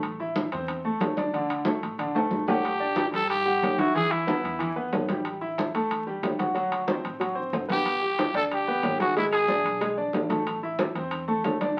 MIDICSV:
0, 0, Header, 1, 5, 480
1, 0, Start_track
1, 0, Tempo, 326087
1, 52, Time_signature, 4, 2, 24, 8
1, 17367, End_track
2, 0, Start_track
2, 0, Title_t, "Trumpet"
2, 0, Program_c, 0, 56
2, 3661, Note_on_c, 0, 67, 93
2, 4558, Note_off_c, 0, 67, 0
2, 4634, Note_on_c, 0, 69, 106
2, 4847, Note_off_c, 0, 69, 0
2, 4857, Note_on_c, 0, 67, 102
2, 5576, Note_on_c, 0, 66, 87
2, 5598, Note_off_c, 0, 67, 0
2, 5814, Note_off_c, 0, 66, 0
2, 5832, Note_on_c, 0, 68, 101
2, 6054, Note_on_c, 0, 64, 79
2, 6076, Note_off_c, 0, 68, 0
2, 7013, Note_off_c, 0, 64, 0
2, 11360, Note_on_c, 0, 67, 108
2, 12247, Note_off_c, 0, 67, 0
2, 12311, Note_on_c, 0, 69, 104
2, 12415, Note_off_c, 0, 69, 0
2, 12567, Note_on_c, 0, 67, 90
2, 13220, Note_off_c, 0, 67, 0
2, 13258, Note_on_c, 0, 66, 87
2, 13479, Note_off_c, 0, 66, 0
2, 13512, Note_on_c, 0, 64, 84
2, 13615, Note_off_c, 0, 64, 0
2, 13727, Note_on_c, 0, 68, 88
2, 14631, Note_off_c, 0, 68, 0
2, 17367, End_track
3, 0, Start_track
3, 0, Title_t, "Grand piano"
3, 0, Program_c, 1, 0
3, 0, Note_on_c, 1, 57, 64
3, 0, Note_on_c, 1, 69, 65
3, 205, Note_off_c, 1, 57, 0
3, 211, Note_off_c, 1, 69, 0
3, 291, Note_on_c, 1, 64, 63
3, 299, Note_on_c, 1, 76, 72
3, 685, Note_off_c, 1, 64, 0
3, 689, Note_off_c, 1, 76, 0
3, 769, Note_on_c, 1, 60, 74
3, 773, Note_on_c, 1, 72, 80
3, 1163, Note_off_c, 1, 60, 0
3, 1166, Note_off_c, 1, 72, 0
3, 1247, Note_on_c, 1, 69, 66
3, 1250, Note_on_c, 1, 57, 76
3, 1643, Note_off_c, 1, 69, 0
3, 1644, Note_off_c, 1, 57, 0
3, 1714, Note_on_c, 1, 62, 66
3, 1724, Note_on_c, 1, 74, 69
3, 1918, Note_off_c, 1, 62, 0
3, 1924, Note_off_c, 1, 74, 0
3, 1965, Note_on_c, 1, 50, 84
3, 1972, Note_on_c, 1, 62, 80
3, 2361, Note_off_c, 1, 50, 0
3, 2365, Note_off_c, 1, 62, 0
3, 2439, Note_on_c, 1, 57, 67
3, 2442, Note_on_c, 1, 69, 69
3, 2838, Note_off_c, 1, 57, 0
3, 2840, Note_off_c, 1, 69, 0
3, 2924, Note_on_c, 1, 50, 68
3, 2931, Note_on_c, 1, 62, 76
3, 3124, Note_off_c, 1, 50, 0
3, 3128, Note_off_c, 1, 62, 0
3, 3163, Note_on_c, 1, 57, 79
3, 3176, Note_on_c, 1, 69, 67
3, 3560, Note_off_c, 1, 57, 0
3, 3568, Note_off_c, 1, 69, 0
3, 3648, Note_on_c, 1, 57, 68
3, 3651, Note_on_c, 1, 78, 73
3, 4043, Note_off_c, 1, 57, 0
3, 4045, Note_off_c, 1, 78, 0
3, 4124, Note_on_c, 1, 74, 72
3, 4128, Note_on_c, 1, 62, 64
3, 4521, Note_off_c, 1, 74, 0
3, 4523, Note_off_c, 1, 62, 0
3, 4588, Note_on_c, 1, 55, 73
3, 4597, Note_on_c, 1, 67, 80
3, 4992, Note_off_c, 1, 55, 0
3, 4996, Note_off_c, 1, 67, 0
3, 5086, Note_on_c, 1, 55, 70
3, 5089, Note_on_c, 1, 78, 70
3, 5482, Note_off_c, 1, 55, 0
3, 5484, Note_off_c, 1, 78, 0
3, 5575, Note_on_c, 1, 76, 63
3, 5577, Note_on_c, 1, 64, 72
3, 5771, Note_off_c, 1, 76, 0
3, 5772, Note_off_c, 1, 64, 0
3, 5808, Note_on_c, 1, 52, 86
3, 5811, Note_on_c, 1, 64, 84
3, 6203, Note_off_c, 1, 52, 0
3, 6205, Note_off_c, 1, 64, 0
3, 6287, Note_on_c, 1, 59, 75
3, 6289, Note_on_c, 1, 71, 77
3, 6683, Note_off_c, 1, 59, 0
3, 6684, Note_off_c, 1, 71, 0
3, 6757, Note_on_c, 1, 52, 78
3, 6760, Note_on_c, 1, 64, 78
3, 6960, Note_off_c, 1, 52, 0
3, 6962, Note_off_c, 1, 64, 0
3, 7007, Note_on_c, 1, 71, 74
3, 7010, Note_on_c, 1, 59, 69
3, 7403, Note_off_c, 1, 71, 0
3, 7405, Note_off_c, 1, 59, 0
3, 7486, Note_on_c, 1, 55, 69
3, 7487, Note_on_c, 1, 67, 67
3, 7883, Note_off_c, 1, 55, 0
3, 7883, Note_off_c, 1, 67, 0
3, 7967, Note_on_c, 1, 64, 71
3, 7971, Note_on_c, 1, 76, 74
3, 8363, Note_off_c, 1, 64, 0
3, 8366, Note_off_c, 1, 76, 0
3, 8458, Note_on_c, 1, 57, 80
3, 8464, Note_on_c, 1, 69, 73
3, 8850, Note_off_c, 1, 57, 0
3, 8853, Note_off_c, 1, 69, 0
3, 8931, Note_on_c, 1, 55, 70
3, 8939, Note_on_c, 1, 67, 78
3, 9325, Note_off_c, 1, 55, 0
3, 9330, Note_off_c, 1, 67, 0
3, 9402, Note_on_c, 1, 66, 62
3, 9402, Note_on_c, 1, 78, 59
3, 9603, Note_off_c, 1, 66, 0
3, 9603, Note_off_c, 1, 78, 0
3, 9634, Note_on_c, 1, 54, 89
3, 9643, Note_on_c, 1, 66, 83
3, 10035, Note_off_c, 1, 54, 0
3, 10041, Note_off_c, 1, 66, 0
3, 10114, Note_on_c, 1, 60, 70
3, 10122, Note_on_c, 1, 72, 69
3, 10515, Note_off_c, 1, 60, 0
3, 10520, Note_off_c, 1, 72, 0
3, 10594, Note_on_c, 1, 54, 81
3, 10597, Note_on_c, 1, 66, 69
3, 10798, Note_off_c, 1, 54, 0
3, 10800, Note_off_c, 1, 66, 0
3, 10819, Note_on_c, 1, 60, 67
3, 10826, Note_on_c, 1, 72, 75
3, 11227, Note_off_c, 1, 60, 0
3, 11231, Note_off_c, 1, 72, 0
3, 11312, Note_on_c, 1, 71, 66
3, 11313, Note_on_c, 1, 59, 62
3, 11714, Note_off_c, 1, 71, 0
3, 11715, Note_off_c, 1, 59, 0
3, 11800, Note_on_c, 1, 67, 70
3, 11803, Note_on_c, 1, 79, 63
3, 12198, Note_off_c, 1, 67, 0
3, 12200, Note_off_c, 1, 79, 0
3, 12286, Note_on_c, 1, 62, 75
3, 12292, Note_on_c, 1, 74, 78
3, 12682, Note_off_c, 1, 62, 0
3, 12686, Note_off_c, 1, 74, 0
3, 12772, Note_on_c, 1, 59, 75
3, 12779, Note_on_c, 1, 71, 75
3, 13166, Note_off_c, 1, 59, 0
3, 13170, Note_off_c, 1, 71, 0
3, 13232, Note_on_c, 1, 68, 63
3, 13242, Note_on_c, 1, 80, 65
3, 13437, Note_off_c, 1, 68, 0
3, 13443, Note_off_c, 1, 80, 0
3, 13493, Note_on_c, 1, 68, 82
3, 13494, Note_on_c, 1, 56, 86
3, 13886, Note_off_c, 1, 68, 0
3, 13887, Note_off_c, 1, 56, 0
3, 13959, Note_on_c, 1, 62, 62
3, 13965, Note_on_c, 1, 74, 71
3, 14358, Note_off_c, 1, 62, 0
3, 14362, Note_off_c, 1, 74, 0
3, 14439, Note_on_c, 1, 56, 82
3, 14446, Note_on_c, 1, 68, 78
3, 14641, Note_off_c, 1, 56, 0
3, 14645, Note_off_c, 1, 68, 0
3, 14681, Note_on_c, 1, 62, 66
3, 14688, Note_on_c, 1, 74, 70
3, 15079, Note_off_c, 1, 62, 0
3, 15083, Note_off_c, 1, 74, 0
3, 15152, Note_on_c, 1, 57, 68
3, 15161, Note_on_c, 1, 69, 70
3, 15554, Note_off_c, 1, 57, 0
3, 15559, Note_off_c, 1, 69, 0
3, 15648, Note_on_c, 1, 64, 63
3, 15653, Note_on_c, 1, 76, 75
3, 16043, Note_off_c, 1, 64, 0
3, 16046, Note_off_c, 1, 76, 0
3, 16125, Note_on_c, 1, 60, 77
3, 16131, Note_on_c, 1, 72, 72
3, 16521, Note_off_c, 1, 60, 0
3, 16525, Note_off_c, 1, 72, 0
3, 16600, Note_on_c, 1, 57, 77
3, 16610, Note_on_c, 1, 69, 71
3, 16998, Note_off_c, 1, 57, 0
3, 17004, Note_off_c, 1, 69, 0
3, 17086, Note_on_c, 1, 62, 66
3, 17095, Note_on_c, 1, 74, 73
3, 17284, Note_off_c, 1, 62, 0
3, 17290, Note_off_c, 1, 74, 0
3, 17367, End_track
4, 0, Start_track
4, 0, Title_t, "Upright bass"
4, 0, Program_c, 2, 32
4, 0, Note_on_c, 2, 33, 94
4, 689, Note_off_c, 2, 33, 0
4, 772, Note_on_c, 2, 40, 85
4, 1441, Note_off_c, 2, 40, 0
4, 1500, Note_on_c, 2, 38, 90
4, 2613, Note_off_c, 2, 38, 0
4, 2693, Note_on_c, 2, 33, 80
4, 3362, Note_off_c, 2, 33, 0
4, 3402, Note_on_c, 2, 31, 90
4, 4524, Note_off_c, 2, 31, 0
4, 4603, Note_on_c, 2, 43, 80
4, 5277, Note_off_c, 2, 43, 0
4, 5330, Note_on_c, 2, 40, 87
4, 6448, Note_off_c, 2, 40, 0
4, 6524, Note_on_c, 2, 40, 84
4, 7197, Note_off_c, 2, 40, 0
4, 7259, Note_on_c, 2, 33, 83
4, 8373, Note_off_c, 2, 33, 0
4, 8447, Note_on_c, 2, 40, 86
4, 9119, Note_off_c, 2, 40, 0
4, 9167, Note_on_c, 2, 38, 88
4, 10287, Note_off_c, 2, 38, 0
4, 10378, Note_on_c, 2, 33, 86
4, 11045, Note_off_c, 2, 33, 0
4, 11080, Note_on_c, 2, 31, 92
4, 12203, Note_off_c, 2, 31, 0
4, 12271, Note_on_c, 2, 38, 83
4, 12951, Note_off_c, 2, 38, 0
4, 13009, Note_on_c, 2, 32, 94
4, 14128, Note_off_c, 2, 32, 0
4, 14200, Note_on_c, 2, 35, 83
4, 14875, Note_off_c, 2, 35, 0
4, 14916, Note_on_c, 2, 33, 87
4, 16040, Note_off_c, 2, 33, 0
4, 16123, Note_on_c, 2, 40, 91
4, 16796, Note_off_c, 2, 40, 0
4, 16853, Note_on_c, 2, 38, 89
4, 17367, Note_off_c, 2, 38, 0
4, 17367, End_track
5, 0, Start_track
5, 0, Title_t, "Drums"
5, 44, Note_on_c, 9, 65, 80
5, 50, Note_on_c, 9, 63, 34
5, 192, Note_off_c, 9, 65, 0
5, 198, Note_off_c, 9, 63, 0
5, 289, Note_on_c, 9, 63, 33
5, 436, Note_off_c, 9, 63, 0
5, 525, Note_on_c, 9, 63, 88
5, 531, Note_on_c, 9, 65, 68
5, 531, Note_on_c, 9, 66, 57
5, 672, Note_off_c, 9, 63, 0
5, 678, Note_off_c, 9, 65, 0
5, 678, Note_off_c, 9, 66, 0
5, 768, Note_on_c, 9, 65, 70
5, 769, Note_on_c, 9, 63, 29
5, 915, Note_off_c, 9, 65, 0
5, 916, Note_off_c, 9, 63, 0
5, 1006, Note_on_c, 9, 65, 83
5, 1008, Note_on_c, 9, 63, 32
5, 1153, Note_off_c, 9, 65, 0
5, 1155, Note_off_c, 9, 63, 0
5, 1242, Note_on_c, 9, 63, 34
5, 1389, Note_off_c, 9, 63, 0
5, 1478, Note_on_c, 9, 63, 85
5, 1488, Note_on_c, 9, 65, 87
5, 1488, Note_on_c, 9, 66, 76
5, 1625, Note_off_c, 9, 63, 0
5, 1636, Note_off_c, 9, 65, 0
5, 1636, Note_off_c, 9, 66, 0
5, 1724, Note_on_c, 9, 63, 77
5, 1735, Note_on_c, 9, 65, 70
5, 1872, Note_off_c, 9, 63, 0
5, 1882, Note_off_c, 9, 65, 0
5, 1957, Note_on_c, 9, 63, 30
5, 1975, Note_on_c, 9, 65, 60
5, 2105, Note_off_c, 9, 63, 0
5, 2122, Note_off_c, 9, 65, 0
5, 2199, Note_on_c, 9, 63, 28
5, 2211, Note_on_c, 9, 65, 91
5, 2346, Note_off_c, 9, 63, 0
5, 2358, Note_off_c, 9, 65, 0
5, 2428, Note_on_c, 9, 63, 96
5, 2455, Note_on_c, 9, 66, 61
5, 2575, Note_off_c, 9, 63, 0
5, 2602, Note_off_c, 9, 66, 0
5, 2686, Note_on_c, 9, 63, 26
5, 2696, Note_on_c, 9, 65, 75
5, 2833, Note_off_c, 9, 63, 0
5, 2843, Note_off_c, 9, 65, 0
5, 2917, Note_on_c, 9, 63, 33
5, 2931, Note_on_c, 9, 65, 86
5, 3064, Note_off_c, 9, 63, 0
5, 3079, Note_off_c, 9, 65, 0
5, 3168, Note_on_c, 9, 63, 32
5, 3178, Note_on_c, 9, 65, 88
5, 3316, Note_off_c, 9, 63, 0
5, 3325, Note_off_c, 9, 65, 0
5, 3397, Note_on_c, 9, 63, 81
5, 3544, Note_off_c, 9, 63, 0
5, 3647, Note_on_c, 9, 63, 81
5, 3653, Note_on_c, 9, 66, 98
5, 3795, Note_off_c, 9, 63, 0
5, 3800, Note_off_c, 9, 66, 0
5, 3889, Note_on_c, 9, 63, 29
5, 3901, Note_on_c, 9, 65, 79
5, 4036, Note_off_c, 9, 63, 0
5, 4048, Note_off_c, 9, 65, 0
5, 4121, Note_on_c, 9, 63, 30
5, 4268, Note_off_c, 9, 63, 0
5, 4357, Note_on_c, 9, 63, 87
5, 4377, Note_on_c, 9, 65, 67
5, 4377, Note_on_c, 9, 66, 57
5, 4505, Note_off_c, 9, 63, 0
5, 4524, Note_off_c, 9, 65, 0
5, 4524, Note_off_c, 9, 66, 0
5, 4607, Note_on_c, 9, 63, 27
5, 4618, Note_on_c, 9, 65, 72
5, 4754, Note_off_c, 9, 63, 0
5, 4765, Note_off_c, 9, 65, 0
5, 4856, Note_on_c, 9, 65, 91
5, 4862, Note_on_c, 9, 63, 35
5, 5003, Note_off_c, 9, 65, 0
5, 5010, Note_off_c, 9, 63, 0
5, 5096, Note_on_c, 9, 63, 31
5, 5243, Note_off_c, 9, 63, 0
5, 5342, Note_on_c, 9, 63, 75
5, 5351, Note_on_c, 9, 65, 89
5, 5351, Note_on_c, 9, 66, 70
5, 5489, Note_off_c, 9, 63, 0
5, 5498, Note_off_c, 9, 65, 0
5, 5498, Note_off_c, 9, 66, 0
5, 5568, Note_on_c, 9, 63, 85
5, 5577, Note_on_c, 9, 65, 76
5, 5715, Note_off_c, 9, 63, 0
5, 5724, Note_off_c, 9, 65, 0
5, 5816, Note_on_c, 9, 63, 33
5, 5822, Note_on_c, 9, 65, 56
5, 5963, Note_off_c, 9, 63, 0
5, 5969, Note_off_c, 9, 65, 0
5, 6050, Note_on_c, 9, 65, 86
5, 6056, Note_on_c, 9, 63, 29
5, 6197, Note_off_c, 9, 65, 0
5, 6203, Note_off_c, 9, 63, 0
5, 6297, Note_on_c, 9, 66, 58
5, 6298, Note_on_c, 9, 63, 91
5, 6444, Note_off_c, 9, 66, 0
5, 6445, Note_off_c, 9, 63, 0
5, 6543, Note_on_c, 9, 63, 31
5, 6549, Note_on_c, 9, 65, 66
5, 6690, Note_off_c, 9, 63, 0
5, 6696, Note_off_c, 9, 65, 0
5, 6778, Note_on_c, 9, 65, 85
5, 6782, Note_on_c, 9, 63, 29
5, 6925, Note_off_c, 9, 65, 0
5, 6929, Note_off_c, 9, 63, 0
5, 7017, Note_on_c, 9, 63, 32
5, 7164, Note_off_c, 9, 63, 0
5, 7252, Note_on_c, 9, 65, 65
5, 7252, Note_on_c, 9, 66, 82
5, 7257, Note_on_c, 9, 63, 74
5, 7399, Note_off_c, 9, 65, 0
5, 7399, Note_off_c, 9, 66, 0
5, 7404, Note_off_c, 9, 63, 0
5, 7487, Note_on_c, 9, 65, 69
5, 7500, Note_on_c, 9, 63, 88
5, 7634, Note_off_c, 9, 65, 0
5, 7647, Note_off_c, 9, 63, 0
5, 7728, Note_on_c, 9, 65, 79
5, 7744, Note_on_c, 9, 63, 32
5, 7875, Note_off_c, 9, 65, 0
5, 7892, Note_off_c, 9, 63, 0
5, 7986, Note_on_c, 9, 63, 34
5, 8133, Note_off_c, 9, 63, 0
5, 8215, Note_on_c, 9, 65, 65
5, 8215, Note_on_c, 9, 66, 60
5, 8225, Note_on_c, 9, 63, 83
5, 8363, Note_off_c, 9, 65, 0
5, 8363, Note_off_c, 9, 66, 0
5, 8372, Note_off_c, 9, 63, 0
5, 8460, Note_on_c, 9, 65, 72
5, 8468, Note_on_c, 9, 63, 27
5, 8607, Note_off_c, 9, 65, 0
5, 8615, Note_off_c, 9, 63, 0
5, 8696, Note_on_c, 9, 63, 35
5, 8700, Note_on_c, 9, 65, 92
5, 8843, Note_off_c, 9, 63, 0
5, 8847, Note_off_c, 9, 65, 0
5, 8932, Note_on_c, 9, 63, 32
5, 9079, Note_off_c, 9, 63, 0
5, 9174, Note_on_c, 9, 65, 93
5, 9174, Note_on_c, 9, 66, 73
5, 9181, Note_on_c, 9, 63, 79
5, 9322, Note_off_c, 9, 65, 0
5, 9322, Note_off_c, 9, 66, 0
5, 9328, Note_off_c, 9, 63, 0
5, 9411, Note_on_c, 9, 65, 69
5, 9417, Note_on_c, 9, 63, 81
5, 9558, Note_off_c, 9, 65, 0
5, 9564, Note_off_c, 9, 63, 0
5, 9650, Note_on_c, 9, 65, 56
5, 9657, Note_on_c, 9, 63, 33
5, 9797, Note_off_c, 9, 65, 0
5, 9804, Note_off_c, 9, 63, 0
5, 9884, Note_on_c, 9, 63, 31
5, 9892, Note_on_c, 9, 65, 89
5, 10031, Note_off_c, 9, 63, 0
5, 10039, Note_off_c, 9, 65, 0
5, 10124, Note_on_c, 9, 63, 91
5, 10131, Note_on_c, 9, 66, 59
5, 10272, Note_off_c, 9, 63, 0
5, 10279, Note_off_c, 9, 66, 0
5, 10356, Note_on_c, 9, 63, 28
5, 10375, Note_on_c, 9, 65, 74
5, 10504, Note_off_c, 9, 63, 0
5, 10522, Note_off_c, 9, 65, 0
5, 10607, Note_on_c, 9, 63, 33
5, 10614, Note_on_c, 9, 65, 85
5, 10754, Note_off_c, 9, 63, 0
5, 10761, Note_off_c, 9, 65, 0
5, 10862, Note_on_c, 9, 63, 36
5, 11010, Note_off_c, 9, 63, 0
5, 11089, Note_on_c, 9, 65, 69
5, 11089, Note_on_c, 9, 66, 74
5, 11099, Note_on_c, 9, 63, 73
5, 11237, Note_off_c, 9, 65, 0
5, 11237, Note_off_c, 9, 66, 0
5, 11246, Note_off_c, 9, 63, 0
5, 11327, Note_on_c, 9, 63, 81
5, 11336, Note_on_c, 9, 65, 76
5, 11474, Note_off_c, 9, 63, 0
5, 11483, Note_off_c, 9, 65, 0
5, 11566, Note_on_c, 9, 65, 83
5, 11567, Note_on_c, 9, 63, 32
5, 11571, Note_on_c, 9, 75, 61
5, 11713, Note_off_c, 9, 65, 0
5, 11714, Note_off_c, 9, 63, 0
5, 11718, Note_off_c, 9, 75, 0
5, 11811, Note_on_c, 9, 63, 31
5, 11958, Note_off_c, 9, 63, 0
5, 12051, Note_on_c, 9, 65, 76
5, 12051, Note_on_c, 9, 66, 53
5, 12053, Note_on_c, 9, 63, 85
5, 12198, Note_off_c, 9, 65, 0
5, 12198, Note_off_c, 9, 66, 0
5, 12201, Note_off_c, 9, 63, 0
5, 12287, Note_on_c, 9, 65, 72
5, 12296, Note_on_c, 9, 63, 29
5, 12434, Note_off_c, 9, 65, 0
5, 12443, Note_off_c, 9, 63, 0
5, 12533, Note_on_c, 9, 63, 32
5, 12534, Note_on_c, 9, 65, 77
5, 12537, Note_on_c, 9, 75, 62
5, 12680, Note_off_c, 9, 63, 0
5, 12681, Note_off_c, 9, 65, 0
5, 12684, Note_off_c, 9, 75, 0
5, 12769, Note_on_c, 9, 63, 31
5, 12916, Note_off_c, 9, 63, 0
5, 12998, Note_on_c, 9, 63, 70
5, 12999, Note_on_c, 9, 65, 80
5, 12999, Note_on_c, 9, 66, 76
5, 13000, Note_on_c, 9, 75, 66
5, 13146, Note_off_c, 9, 63, 0
5, 13147, Note_off_c, 9, 65, 0
5, 13147, Note_off_c, 9, 66, 0
5, 13148, Note_off_c, 9, 75, 0
5, 13248, Note_on_c, 9, 63, 87
5, 13251, Note_on_c, 9, 65, 74
5, 13396, Note_off_c, 9, 63, 0
5, 13399, Note_off_c, 9, 65, 0
5, 13488, Note_on_c, 9, 63, 30
5, 13493, Note_on_c, 9, 65, 66
5, 13635, Note_off_c, 9, 63, 0
5, 13641, Note_off_c, 9, 65, 0
5, 13712, Note_on_c, 9, 75, 62
5, 13727, Note_on_c, 9, 65, 90
5, 13728, Note_on_c, 9, 63, 29
5, 13859, Note_off_c, 9, 75, 0
5, 13874, Note_off_c, 9, 65, 0
5, 13876, Note_off_c, 9, 63, 0
5, 13956, Note_on_c, 9, 63, 84
5, 13982, Note_on_c, 9, 66, 60
5, 14104, Note_off_c, 9, 63, 0
5, 14129, Note_off_c, 9, 66, 0
5, 14202, Note_on_c, 9, 63, 30
5, 14214, Note_on_c, 9, 65, 76
5, 14349, Note_off_c, 9, 63, 0
5, 14361, Note_off_c, 9, 65, 0
5, 14438, Note_on_c, 9, 75, 68
5, 14446, Note_on_c, 9, 65, 95
5, 14448, Note_on_c, 9, 63, 33
5, 14586, Note_off_c, 9, 75, 0
5, 14593, Note_off_c, 9, 65, 0
5, 14595, Note_off_c, 9, 63, 0
5, 14690, Note_on_c, 9, 63, 31
5, 14837, Note_off_c, 9, 63, 0
5, 14914, Note_on_c, 9, 63, 83
5, 14931, Note_on_c, 9, 65, 69
5, 14931, Note_on_c, 9, 66, 77
5, 15061, Note_off_c, 9, 63, 0
5, 15078, Note_off_c, 9, 65, 0
5, 15078, Note_off_c, 9, 66, 0
5, 15158, Note_on_c, 9, 63, 81
5, 15164, Note_on_c, 9, 65, 73
5, 15305, Note_off_c, 9, 63, 0
5, 15311, Note_off_c, 9, 65, 0
5, 15399, Note_on_c, 9, 63, 36
5, 15408, Note_on_c, 9, 65, 87
5, 15413, Note_on_c, 9, 75, 72
5, 15546, Note_off_c, 9, 63, 0
5, 15556, Note_off_c, 9, 65, 0
5, 15560, Note_off_c, 9, 75, 0
5, 15631, Note_on_c, 9, 63, 31
5, 15778, Note_off_c, 9, 63, 0
5, 15879, Note_on_c, 9, 63, 89
5, 15884, Note_on_c, 9, 65, 72
5, 15884, Note_on_c, 9, 66, 55
5, 16026, Note_off_c, 9, 63, 0
5, 16031, Note_off_c, 9, 65, 0
5, 16031, Note_off_c, 9, 66, 0
5, 16125, Note_on_c, 9, 65, 68
5, 16130, Note_on_c, 9, 63, 27
5, 16272, Note_off_c, 9, 65, 0
5, 16277, Note_off_c, 9, 63, 0
5, 16356, Note_on_c, 9, 65, 88
5, 16367, Note_on_c, 9, 75, 68
5, 16372, Note_on_c, 9, 63, 32
5, 16503, Note_off_c, 9, 65, 0
5, 16514, Note_off_c, 9, 75, 0
5, 16520, Note_off_c, 9, 63, 0
5, 16614, Note_on_c, 9, 63, 33
5, 16762, Note_off_c, 9, 63, 0
5, 16845, Note_on_c, 9, 65, 86
5, 16845, Note_on_c, 9, 66, 77
5, 16851, Note_on_c, 9, 63, 77
5, 16859, Note_on_c, 9, 75, 57
5, 16993, Note_off_c, 9, 65, 0
5, 16993, Note_off_c, 9, 66, 0
5, 16999, Note_off_c, 9, 63, 0
5, 17006, Note_off_c, 9, 75, 0
5, 17089, Note_on_c, 9, 65, 71
5, 17097, Note_on_c, 9, 63, 81
5, 17236, Note_off_c, 9, 65, 0
5, 17244, Note_off_c, 9, 63, 0
5, 17367, End_track
0, 0, End_of_file